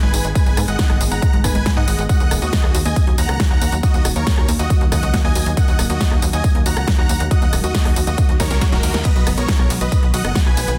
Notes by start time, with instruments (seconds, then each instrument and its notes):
0.03 analog synth bass G#1, synth arpeggio sound G#3, supersaw synth B4 G#5
0.14 analog synth bass G#1, synth arpeggio sound D#4, open hi-hat, tambourine
0.25 analog synth bass G#1, synth arpeggio sound G#3, closed hi-hat, tambourine
0.35 synth arpeggio sound G#3, supersaw synth B4 G#5, kick, closed hi-hat, tambourine
0.46 analog synth bass G#1, synth arpeggio sound D#4, closed hi-hat, tambourine
0.57 analog synth bass G#2, synth arpeggio sound G#3, cross-stick, open hi-hat, tambourine
0.68 analog synth bass G#1, synth arpeggio sound G#3, supersaw synth D#5 F#5, closed hi-hat, tambourine
0.79 synth arpeggio sound D#4, kick, snare, closed hi-hat, tambourine
0.90 analog synth bass G#1, synth arpeggio sound G#3, cross-stick, closed hi-hat
1.01 analog synth bass G#1, synth arpeggio sound G#3, open hi-hat, tambourine
1.11 analog synth bass G#1, synth arpeggio sound D#4, supersaw synth F#5 A#5, closed hi-hat, tambourine
1.22 synth arpeggio sound G#3, kick, closed hi-hat, tambourine
1.33 analog synth bass G#1, synth arpeggio sound G#3, closed hi-hat
1.44 analog synth bass G#1, synth arpeggio sound D#4, supersaw synth B4 G#5, kick, cross-stick, open hi-hat, tambourine
1.55 analog synth bass G#1, synth arpeggio sound G#3, closed hi-hat, tambourine
1.66 synth arpeggio sound G#3, kick, snare, closed hi-hat, tambourine
1.77 analog synth bass G#2, synth arpeggio sound D#4, supersaw synth D#5 F#5
1.88 analog synth bass G#1, synth arpeggio sound G#3, open hi-hat, tambourine
1.98 analog synth bass G#1, synth arpeggio sound G#3, closed hi-hat, tambourine
2.09 synth arpeggio sound F#4, supersaw synth D#5 F#5, kick, closed hi-hat, tambourine
2.20 analog synth bass D#2, synth arpeggio sound A#3, closed hi-hat, tambourine
2.31 analog synth bass D#1, synth arpeggio sound A#3, cross-stick, open hi-hat, tambourine
2.42 analog synth bass D#2, synth arpeggio sound F#4, supersaw synth F#4 D#5, closed hi-hat, tambourine
2.53 synth arpeggio sound A#3, kick, snare, closed hi-hat, tambourine
2.64 analog synth bass D#2, synth arpeggio sound A#3, cross-stick
2.75 analog synth bass D#2, synth arpeggio sound F#4, open hi-hat, tambourine
2.85 analog synth bass D#2, synth arpeggio sound A#3, supersaw synth D#5 G#5, closed hi-hat, tambourine
2.96 synth arpeggio sound A#3, kick, closed hi-hat, tambourine
3.07 analog synth bass D#2, synth arpeggio sound F#4, closed hi-hat
3.18 analog synth bass D#2, synth arpeggio sound A#3, supersaw synth F#5 A#5, open hi-hat, tambourine
3.29 analog synth bass C#2, synth arpeggio sound A#3, cross-stick, closed hi-hat, tambourine
3.40 synth arpeggio sound F#4, kick, snare, closed hi-hat, tambourine
3.51 analog synth bass D#2, synth arpeggio sound A#3, supersaw synth F#5 A#5
3.62 analog synth bass D#2, synth arpeggio sound A#3, open hi-hat, tambourine
3.72 analog synth bass D#2, synth arpeggio sound F#4, closed hi-hat, tambourine
3.83 synth arpeggio sound A#3, supersaw synth F#4 D#5, kick, closed hi-hat, tambourine
3.94 analog synth bass D#2, synth arpeggio sound A#3, closed hi-hat, tambourine
4.05 analog synth bass D#1, synth arpeggio sound F#4, cross-stick, open hi-hat, tambourine
4.16 analog synth bass D#2, synth arpeggio sound A#3, supersaw synth A#4 C#5, closed hi-hat, tambourine
4.27 synth arpeggio sound A#3, kick, snare, closed hi-hat, tambourine
4.38 analog synth bass D#2, synth arpeggio sound F#4, cross-stick
4.49 analog synth bass D#2, synth arpeggio sound A#3, open hi-hat, tambourine
4.59 analog synth bass D#2, synth arpeggio sound A#3, supersaw synth F#4 D#5, closed hi-hat, tambourine
4.70 synth arpeggio sound F#4, kick, closed hi-hat, tambourine
4.81 analog synth bass D#2, synth arpeggio sound A#3, closed hi-hat
4.92 analog synth bass D#2, synth arpeggio sound A#3, supersaw synth D#5 F#5, kick, cross-stick, open hi-hat, tambourine
5.03 analog synth bass C#2, synth arpeggio sound F#4, closed hi-hat, tambourine
5.14 synth arpeggio sound A#3, kick, snare, closed hi-hat, tambourine
5.25 analog synth bass D#2, synth arpeggio sound A#3, supersaw synth D#5 G#5
5.35 analog synth bass D#2, synth arpeggio sound F#4, open hi-hat, tambourine
5.46 analog synth bass D#2, synth arpeggio sound A#3, closed hi-hat, tambourine
5.57 synth arpeggio sound A#3, supersaw synth D#5 F#5, kick, closed hi-hat, tambourine
5.68 analog synth bass D#2, synth arpeggio sound F#4, closed hi-hat, tambourine
5.79 analog synth bass D#1, synth arpeggio sound A#3, cross-stick, open hi-hat, tambourine
5.90 analog synth bass D#2, synth arpeggio sound A#3, supersaw synth F#4 D#5, closed hi-hat, tambourine
6.01 synth arpeggio sound F#4, kick, snare, closed hi-hat, tambourine
6.11 analog synth bass D#2, synth arpeggio sound A#3, cross-stick
6.22 analog synth bass D#2, synth arpeggio sound A#3, open hi-hat, tambourine
6.33 analog synth bass D#2, synth arpeggio sound F#4, supersaw synth D#5 G#5, closed hi-hat, tambourine
6.44 synth arpeggio sound A#3, kick, closed hi-hat, tambourine
6.55 analog synth bass D#2, synth arpeggio sound A#3, closed hi-hat
6.66 analog synth bass D#2, synth arpeggio sound F#4, supersaw synth F#5 A#5, open hi-hat, tambourine
6.77 analog synth bass C#2, synth arpeggio sound A#3, cross-stick, closed hi-hat, tambourine
6.88 synth arpeggio sound A#3, kick, snare, closed hi-hat, tambourine
6.98 analog synth bass D#2, synth arpeggio sound F#4, supersaw synth F#5 A#5
7.09 analog synth bass D#2, synth arpeggio sound A#3, open hi-hat, tambourine
7.20 analog synth bass D#2, synth arpeggio sound A#3, closed hi-hat, tambourine
7.31 synth arpeggio sound F#4, supersaw synth D#5 F#5, kick, closed hi-hat, tambourine
7.42 analog synth bass D#2, synth arpeggio sound A#3, closed hi-hat, tambourine
7.53 analog synth bass D#1, synth arpeggio sound A#3, cross-stick, open hi-hat, tambourine
7.64 analog synth bass D#2, synth arpeggio sound F#4, supersaw synth F#4 D#5, closed hi-hat, tambourine
7.75 synth arpeggio sound A#3, kick, snare, closed hi-hat, tambourine
7.85 analog synth bass D#2, synth arpeggio sound A#3, cross-stick, open hi-hat
7.96 analog synth bass D#2, synth arpeggio sound F#4, open hi-hat, tambourine
8.07 analog synth bass D#2, synth arpeggio sound A#3, supersaw synth F#4 D#5, closed hi-hat, tambourine
8.18 synth arpeggio sound A#3, kick, closed hi-hat, tambourine, reverse cymbal
8.29 analog synth bass D#2, synth arpeggio sound F#4, closed hi-hat
8.40 analog synth bass D#2, synth arpeggio sound D#4, supersaw synth A#4 C#5, kick, snare, open hi-hat, tambourine
8.51 analog synth bass C#2, synth arpeggio sound A#4, snare, closed hi-hat, tambourine
8.61 synth arpeggio sound F#4, kick, snare, closed hi-hat, tambourine
8.72 analog synth bass D#1, synth arpeggio sound D#4, supersaw synth F#4 A#4, snare, closed hi-hat
8.83 analog synth bass D#2, synth arpeggio sound A#4, open hi-hat, tambourine
8.94 analog synth bass D#2, synth arpeggio sound A#4, snare, closed hi-hat, tambourine
9.05 synth arpeggio sound B3, supersaw synth B4 D#5, kick, closed hi-hat, ride, tambourine, crash
9.16 analog synth bass B1, synth arpeggio sound F#4, closed hi-hat, tambourine
9.27 analog synth bass F#1, synth arpeggio sound B3, cross-stick, open hi-hat, ride, tambourine
9.38 analog synth bass B1, synth arpeggio sound B3, supersaw synth A#4 C#5, closed hi-hat, tambourine
9.48 synth arpeggio sound F#4, kick, snare, closed hi-hat, ride, tambourine
9.59 analog synth bass B1, synth arpeggio sound B3, cross-stick
9.70 analog synth bass B1, synth arpeggio sound B3, open hi-hat, ride, tambourine
9.81 analog synth bass B1, synth arpeggio sound F#4, supersaw synth B4 D#5, closed hi-hat, tambourine
9.92 synth arpeggio sound B3, kick, closed hi-hat, ride, tambourine
10.03 analog synth bass B1, synth arpeggio sound B3, closed hi-hat
10.14 analog synth bass B1, synth arpeggio sound F#4, supersaw synth D#5 F#5, open hi-hat, ride, tambourine
10.25 analog synth bass F#1, synth arpeggio sound B3, cross-stick, closed hi-hat, tambourine
10.35 synth arpeggio sound B3, kick, snare, closed hi-hat, ride, tambourine
10.46 analog synth bass B1, synth arpeggio sound F#4, supersaw synth B4 G#5
10.57 analog synth bass B1, synth arpeggio sound B3, open hi-hat, ride, tambourine
10.68 analog synth bass B1, synth arpeggio sound B3, closed hi-hat, tambourine